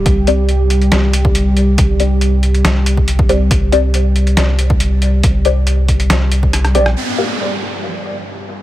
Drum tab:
HH |x-x-x-xxx-x-x-x-|x-x-x-xxx-x-x-x-|x-x-x-xxx-x-x-x-|x-x-x-xxx-x-xxx-|
SD |--------o-------|--------o-------|--------o-------|--------o---rr-r|
BD |o----------o----|o----------o-o--|o----------o----|o-----o----o----|

HH |----------------|
SD |----------------|
BD |----------------|